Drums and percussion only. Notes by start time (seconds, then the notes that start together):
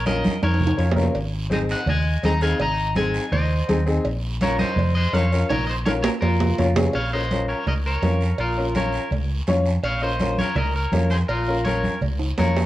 0.06 cowbell, high conga, short guiro
0.24 high conga, short guiro
0.43 cowbell, high conga, high timbale, long guiro
0.54 high timbale
0.61 low conga
0.67 high timbale
0.79 cowbell, short guiro
0.92 low timbale
0.96 low conga, short guiro
1.03 low timbale
1.15 cowbell, long guiro
1.51 cowbell, high conga, short guiro
1.69 short guiro
1.87 cowbell, low conga, long guiro
2.23 cowbell, high conga, short guiro
2.41 short guiro
2.59 cowbell, low conga, long guiro
2.95 cowbell, high conga, short guiro
3.14 short guiro
3.32 cowbell, low conga, long guiro
3.69 cowbell, high conga, short guiro
3.87 short guiro
4.05 cowbell, long guiro
4.41 cowbell, high conga, short guiro
4.58 high conga, short guiro
4.77 cowbell, low conga, long guiro
5.13 cowbell, high conga, short guiro
5.32 short guiro
5.50 cowbell, low conga, high timbale, long guiro
5.86 cowbell, high conga, high timbale, short guiro
6.04 low timbale, short guiro
6.22 cowbell, low timbale, long guiro
6.40 low conga, low timbale
6.58 cowbell, low conga, low timbale, short guiro
6.76 low conga, low timbale, short guiro
6.93 cowbell, long guiro
7.31 cowbell, high conga, short guiro
7.48 short guiro
7.67 cowbell, low conga, long guiro
8.03 cowbell, high conga, low timbale, short guiro
8.21 short guiro
8.38 cowbell, long guiro
8.75 cowbell, high conga, short guiro
8.93 short guiro
9.11 cowbell, low conga, long guiro
9.47 cowbell, high conga, low timbale, short guiro
9.66 short guiro
9.84 cowbell, long guiro
10.20 cowbell, high conga, short guiro
10.38 high conga, short guiro
10.56 cowbell, low conga, long guiro
10.92 cowbell, high conga, low timbale, short guiro
11.11 short guiro
11.29 cowbell, long guiro
11.65 cowbell, high conga, short guiro
11.84 high conga, short guiro
12.01 cowbell, low conga, long guiro
12.19 high timbale
12.38 cowbell, high conga, low timbale, short guiro
12.56 low timbale, short guiro